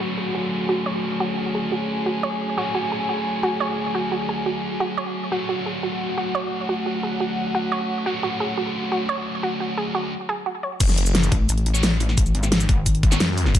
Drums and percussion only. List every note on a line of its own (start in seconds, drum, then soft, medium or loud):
10.80 kick loud
10.80 closed hi-hat loud
10.80 crash loud
10.80 shaker medium
10.89 snare soft
10.89 shaker soft
10.98 closed hi-hat medium
11.06 shaker medium
11.15 snare loud
11.15 closed hi-hat medium
11.23 closed hi-hat soft
11.23 shaker medium
11.32 kick loud
11.32 closed hi-hat medium
11.49 closed hi-hat loud
11.49 shaker soft
11.58 closed hi-hat soft
11.66 closed hi-hat medium
11.75 shaker medium
11.83 snare loud
11.83 closed hi-hat medium
11.83 shaker medium
12.00 open hi-hat medium
12.00 shaker soft
12.09 snare soft
12.18 kick loud
12.18 closed hi-hat loud
12.18 shaker soft
12.26 shaker soft
12.35 closed hi-hat medium
12.43 snare soft
12.43 shaker medium
12.52 snare loud
12.52 closed hi-hat loud
12.60 closed hi-hat soft
12.60 shaker soft
12.69 kick loud
12.69 closed hi-hat medium
12.86 kick medium
12.86 closed hi-hat loud
12.86 shaker soft
12.95 closed hi-hat soft
13.03 kick loud
13.03 closed hi-hat medium
13.12 snare medium
13.12 shaker medium
13.20 snare loud
13.20 closed hi-hat medium
13.20 shaker soft
13.29 snare soft
13.38 open hi-hat medium
13.38 shaker soft
13.46 snare soft
13.55 kick loud
13.55 closed hi-hat medium
13.55 shaker soft